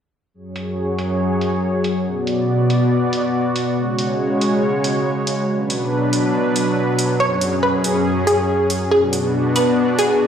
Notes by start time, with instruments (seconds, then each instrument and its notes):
0.34 supersaw synth F#2 F#3 G#4 C#5
0.56 closed hi-hat
0.99 closed hi-hat
1.41 closed hi-hat
1.84 closed hi-hat
2.06 supersaw synth B2 B3 F#4 D5
2.27 closed hi-hat
2.70 closed hi-hat
3.13 closed hi-hat
3.56 closed hi-hat
3.77 supersaw synth C#3 G#3 C#5
3.99 closed hi-hat
4.41 closed hi-hat
4.84 closed hi-hat
5.27 closed hi-hat
5.48 supersaw synth B2 F#3 D4 B4
5.70 closed hi-hat
6.13 closed hi-hat
6.56 closed hi-hat
6.99 closed hi-hat
7.20 supersaw synth F#2 C#4 G#4, synth pluck C#5
7.41 closed hi-hat
7.63 synth pluck B4
7.84 closed hi-hat
8.27 synth pluck G#4, closed hi-hat
8.70 closed hi-hat
8.91 supersaw synth B2 B3 D4 F#4, synth pluck G#4
9.13 closed hi-hat
9.56 synth pluck B4, closed hi-hat
9.99 synth pluck G#4, closed hi-hat